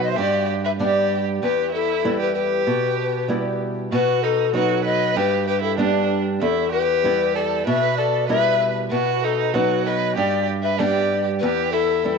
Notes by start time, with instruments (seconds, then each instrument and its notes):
Already playing: nylon-string guitar B2 F#3 B3 D#4
0.03 pan flute D#5
0.08 violin C5, pan flute E5
0.17 nylon-string guitar G2, violin G4, pan flute D5
0.65 violin B4, pan flute E5
0.79 nylon-string guitar G3 B3 D4, violin G4, pan flute D5
1.43 nylon-string guitar E2, violin G4, pan flute B4
1.72 violin E4, pan flute A4
2.05 nylon-string guitar G3 B3 E4
2.20 violin G4, pan flute B4
2.34 violin G4, pan flute B4
2.67 nylon-string guitar B2
3.28 nylon-string guitar G3 B3 E4
3.92 nylon-string guitar B2, violin F#4, pan flute B4
4.23 violin D#4, pan flute A4
4.53 nylon-string guitar F#3 B3 D#4, violin F#4, pan flute B4
4.85 violin B4, pan flute D#5
5.16 nylon-string guitar G2, violin G4, pan flute B4
5.47 violin G4, pan flute B4
5.62 violin E4, pan flute A4
5.78 nylon-string guitar G3 B3 D4, violin D4, pan flute G4
6.41 nylon-string guitar E2, violin E4, pan flute A4
6.72 violin G4, pan flute B4
7.04 nylon-string guitar G3 B3 E4
7.35 violin A4, pan flute D5
7.66 nylon-string guitar B2, violin B4, pan flute E5
7.97 violin A4, pan flute D5
8.28 nylon-string guitar G3 B3 E4, violin B4, pan flute E5
8.90 nylon-string guitar B2, violin F#4, pan flute B4
9.23 violin D#4, pan flute A4
9.54 nylon-string guitar F#3 B3 D#4, violin F#4, pan flute B4
9.85 violin B4, pan flute D#5
10.16 nylon-string guitar G2, violin G4, pan flute D5
10.63 violin B4, pan flute E5
10.78 nylon-string guitar G3 B3 D4, violin G4, pan flute D5
11.40 nylon-string guitar E2, violin G4, pan flute B4
11.72 violin E4, pan flute A4
12.04 nylon-string guitar G3 B3 E4